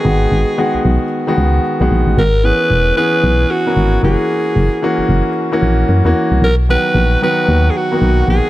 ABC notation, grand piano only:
X:1
M:4/4
L:1/16
Q:"Swing 16ths" 1/4=113
K:B
V:1 name="Grand piano"
[D,G,B,F]3 z [D,G,B,F]3 z2 [D,G,B,F]3 z [D,G,B,F]3 | z2 [E,B,CG]3 z [E,B,CG]3 z2 [E,B,CA]3 [E,A,CF]2- | [E,A,CF]3 z [E,A,CF]3 z2 [E,A,CF]3 z [E,A,CF]3 | z2 [D,F,B,F]3 z [D,F,B,F]3 z2 [D,A,B,F]3 z2 |]